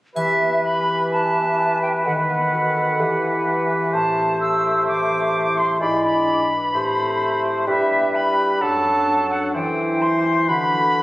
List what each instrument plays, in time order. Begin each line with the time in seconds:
0.16 harp E3, bassoon E3, clarinet G4, oboe B4, flute E5, triangle
0.40 harp B3
0.64 harp G4, flute B5
0.88 harp B4
1.12 harp E4, flute A5
1.35 harp B3
1.59 harp G4
1.82 harp B4, flute G5
2.05 bassoon D#3, harp D#3, clarinet A4, flute F#5
2.29 harp B3, flute F#5
2.53 harp F#4
2.76 harp A4
3.00 harp E3, bassoon E3, clarinet G4
3.23 harp E4
3.47 harp G4
3.70 harp B4
3.93 harp A2, bassoon A3, oboe C5, flute A5
4.17 harp C4
4.40 harp E4, flute E6
4.64 harp G4
4.87 harp E3, flute D6
5.10 harp C4
5.34 harp E4
5.57 harp G4, flute C6
5.80 harp G#2, bassoon G#3, clarinet E4, oboe D5, flute B5
6.04 harp D4, flute B5
6.27 harp E4
6.51 harp B4
6.74 harp A2, bassoon A3, clarinet G4, oboe C5
6.97 harp C4
7.21 harp E4
7.44 harp G4
7.67 harp G2, bassoon G3, clarinet G4, oboe B4, flute E5
7.91 harp B3
8.14 harp E4, flute B5
8.38 harp G4
8.61 harp F#2, bassoon F#3, clarinet D4, oboe A4, flute A5
8.84 harp F#3
9.08 harp D4
9.31 harp A4, flute F#5
9.54 bassoon E3, harp E3, clarinet E4, oboe C5, flute G5
9.78 harp E4
10.02 harp C5, flute C6
10.25 harp G4
10.48 harp D3, bassoon D3, clarinet F#4, oboe B4, flute B5
10.72 harp F#3
10.95 harp F#4